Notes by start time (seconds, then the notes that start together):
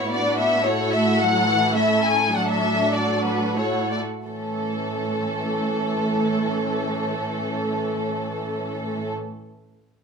Already playing: A2 B3 C#5
0.10 D4 E4 F#4 D5
0.38 E5
0.64 A2 A3 E4 F#4 A4 C#5
0.91 E5
1.19 F#3 A4 F#5
1.48 E3
1.75 A3 C#4 E4 E5
2.05 G#5
2.33 F#3 D4 F#5
2.49 E5
2.94 F#3 F#4 D5
3.25 B4
3.57 A3 E4 F#4 A4 C#5
3.92 D5
4.26 A2 E3 A3 C#4 A4